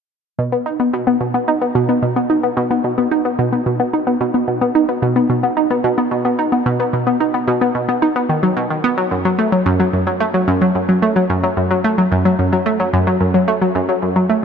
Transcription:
0.39 0.52 B2 medium
0.52 0.62 B3 medium
0.66 0.79 D#4 medium
0.80 0.89 B3 medium
0.93 1.06 B2 medium
1.07 1.16 B3 medium
1.21 1.33 B2 medium
1.34 1.43 B3 medium
1.48 1.61 D#4 medium
1.61 1.71 B3 medium
1.75 1.88 B2 medium
1.89 1.98 B3 medium
2.03 2.15 B2 medium
2.16 2.25 B3 medium
2.30 2.43 D#4 medium
2.43 2.53 B3 medium
2.57 2.70 B2 medium
2.71 2.80 B3 medium
2.84 2.97 B2 medium
2.98 3.07 B3 medium
3.11 3.24 D#4 medium
3.25 3.34 B3 medium
3.39 3.52 B2 medium
3.53 3.62 B3 medium
3.66 3.79 B2 medium
3.80 3.89 B3 medium
3.93 4.06 D#4 medium
4.07 4.16 B3 medium
4.21 4.33 B2 medium
4.34 4.43 B3 medium
4.48 4.61 B2 medium
4.61 4.71 B3 medium
4.75 4.88 D#4 medium
4.89 4.98 B3 medium
5.02 5.15 B2 medium
5.16 5.25 B3 medium
5.30 5.43 B2 medium
5.43 5.52 B3 medium
5.57 5.70 D#4 medium
5.70 5.80 B3 medium
5.84 5.97 B2 medium
5.98 6.07 B3 medium
6.11 6.24 B2 medium
6.25 6.34 B3 medium
6.39 6.52 D#4 medium
6.52 6.61 B3 medium
6.66 6.79 B2 medium
6.80 6.89 B3 medium
6.93 7.06 B2 medium
7.07 7.16 B3 medium
7.20 7.33 D#4 medium
7.34 7.43 B3 medium
7.48 7.61 B2 medium
7.61 7.71 B3 medium
7.75 7.88 B2 medium
7.89 7.98 B3 medium
8.02 8.15 D#4 medium
8.16 8.25 B3 medium
8.29 8.39 D#3 medium
8.43 8.49 F#3 medium
8.57 8.66 B2 medium
8.70 8.80 D#3 medium
8.84 8.90 B3 medium
8.98 9.03 F#3 medium
9.11 9.24 F#2 medium
9.25 9.34 F#3 medium
9.39 9.52 A3 medium
9.52 9.62 F#3 medium
9.66 9.79 F#2 loud
9.80 9.89 F#3 medium
9.93 10.06 F#2 medium
10.07 10.16 F#3 medium
10.20 10.33 A3 medium
10.34 10.43 F#3 medium
10.48 10.61 F#2 loud
10.61 10.71 F#3 medium
10.75 10.88 F#2 medium
10.89 10.98 F#3 medium
11.02 11.15 A3 medium
11.16 11.25 F#3 medium
11.30 11.43 F#2 loud
11.43 11.53 F#3 medium
11.57 11.70 F#2 medium
11.71 11.80 F#3 medium
11.84 11.97 A3 medium
11.98 12.07 F#3 medium
12.12 12.24 F#2 medium
12.25 12.34 F#3 medium
12.39 12.52 F#2 medium
12.53 12.62 F#3 medium
12.66 12.79 A3 medium
12.80 12.89 F#3 medium
12.93 13.06 F#2 loud
13.07 13.16 F#3 medium
13.21 13.33 F#2 medium
13.34 13.43 F#3 medium
13.48 13.61 A3 medium
13.62 13.71 F#3 medium
13.75 13.88 F#2 loud
13.89 13.98 F#3 medium
14.02 14.15 F#2 medium
14.16 14.25 F#3 medium
14.29 14.42 A3 medium

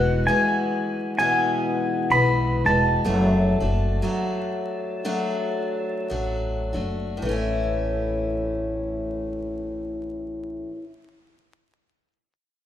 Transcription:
0.00 0.26 E1 medium
0.00 0.27 E3 soft
0.00 0.27 G#3 soft
0.00 0.28 B3 soft
0.00 0.27 F#4 soft
0.00 0.24 F#5 medium
0.27 1.18 E3 soft
0.27 1.18 G#3 medium
0.27 1.19 B3 medium
0.27 1.19 F#4 medium
0.27 1.13 G#5 medium
1.19 2.10 E2 medium
1.19 2.11 B2 medium
1.19 2.09 E3 medium
1.19 2.10 G#3 medium
1.19 2.10 B3 medium
1.19 2.11 F#4 medium
1.19 2.06 G#5 medium
2.10 2.62 B1 medium
2.10 2.65 E3 soft
2.10 2.65 G#3 soft
2.10 2.65 B3 soft
2.10 2.65 F#4 medium
2.10 2.66 B5 medium
2.65 3.03 E1 medium
2.65 3.04 E3 soft
2.65 3.05 G#3 soft
2.65 3.06 B3 soft
2.65 3.05 F#4 soft
2.65 6.07 A5 medium
3.05 3.58 F#1 medium
3.05 3.61 F#3 medium
3.05 3.61 A3 medium
3.05 3.60 D4 medium
3.05 3.59 F#4 medium
3.60 4.01 F#1 medium
3.60 4.02 A3 soft
3.60 4.03 D4 soft
3.60 4.02 F#4 soft
4.02 5.03 F#3 medium
4.02 5.04 A3 medium
4.02 5.04 D4 medium
4.02 5.04 F#4 medium
5.05 6.08 F#3 medium
5.05 6.09 A3 medium
5.05 6.10 D4 medium
5.05 6.10 F#4 medium
6.10 6.71 A1 medium
6.10 6.74 F#3 medium
6.10 6.74 A3 soft
6.10 6.73 D4 medium
6.10 6.72 F#4 medium
6.73 7.19 F#1 medium
6.73 7.22 A3 soft
6.73 7.22 D4 soft
6.73 7.21 F#4 soft
7.17 10.67 A2 medium
7.22 10.62 A1 medium
7.22 10.72 E3 medium
7.22 10.75 A3 medium
7.29 10.79 C#4 medium
7.29 10.81 E4 medium

